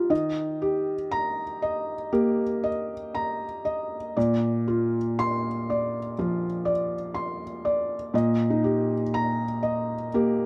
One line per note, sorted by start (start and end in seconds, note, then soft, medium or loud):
0.00 0.12 D#4 soft
0.00 0.13 F4 medium
0.00 0.12 G4 soft
0.00 0.12 A#5 medium
0.10 2.09 D#3 medium
0.10 0.92 D#5 medium
0.62 1.43 G4 medium
1.11 1.93 A#5 medium
1.62 2.43 D#5 medium
2.13 2.67 A#3 medium
2.13 2.94 G4 medium
2.64 3.45 D#5 medium
3.15 3.96 A#5 medium
3.65 4.16 D#5 medium
4.17 6.12 A#2 medium
4.17 4.97 D5 medium
4.68 5.47 F4 medium
5.19 5.97 C6 medium
5.70 6.46 D5 medium
6.19 6.69 F3 medium
6.19 6.95 F4 medium
6.65 7.44 D5 medium
7.14 7.94 C6 medium
7.65 8.14 D5 medium
8.14 10.08 A#2 medium
8.14 8.93 D#5 medium
8.50 9.01 D#4 medium
8.64 9.43 G4 medium
9.14 9.93 A#5 medium
9.63 10.43 D#5 medium
10.14 10.46 A#3 medium
10.14 10.46 G4 medium